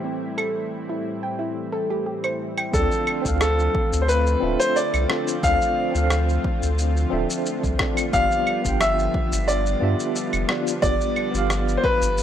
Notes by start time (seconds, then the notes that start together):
Already playing: A2 E3 G3 C4 E4 G4 A4 E5
0.04 C4
0.37 A4, claves
0.89 E4
1.23 G5
1.39 E4
1.72 A4
1.90 G4
2.06 G4
2.24 C5, claves
2.58 G5, claves
2.72 D2 D3 F3 A3 C4 D4 F4 A4 D5, kick, shaker
2.92 shaker
3.07 claves
3.22 D2 C4 D4 F4, kick, shaker
3.26 A4 F5
3.41 A4, cross-stick, shaker
3.59 shaker
3.75 kick
3.92 D2, shaker
4.02 C5
4.08 B4, shaker
4.27 shaker
4.40 D1 C4 D4 F4 A4 E5
4.60 C5, shaker
4.76 D5, shaker
4.94 C2, claves, shaker
5.08 C4 D4 F4 A4 D5, cross-stick
5.28 shaker
5.42 D2 C4 D4 F4 A4 D5 F5, kick, shaker
5.62 shaker
5.91 D2 C4 D4 F4, shaker
5.97 A4 F5
6.10 cross-stick, shaker
6.29 shaker
6.44 kick
6.62 D2, shaker
6.79 shaker
6.97 shaker
7.10 D1 C4 D4 F4 A4 E5
7.30 shaker
7.46 shaker
7.64 C2, kick, shaker
7.78 C4 D4 F4 A4 D5, kick, cross-stick
7.97 claves, shaker
8.11 G1 G3 B3 D4 F4 G4 D5 F5, kick, shaker
8.31 shaker
8.47 claves
8.62 G1 B3 D4 F4, kick, shaker
8.67 G4 G5
8.80 E5, cross-stick, shaker
8.99 shaker
9.14 kick
9.32 G1, shaker
9.48 D5, shaker
9.66 shaker
9.80 G2 B3 D4 F4 G4 E5
10.00 shaker
10.16 shaker
10.33 F1, claves, shaker
10.48 B3 D4 F4 G4 D5, cross-stick
10.67 shaker
10.81 G1 B3 D4 F4 G4 D5, kick, shaker
11.01 shaker
11.16 claves
11.31 G1 B3 D4 F4, shaker
11.36 G4 F5
11.50 cross-stick, shaker
11.68 shaker
11.77 C5
11.84 B4, kick
12.02 G1, shaker
12.18 shaker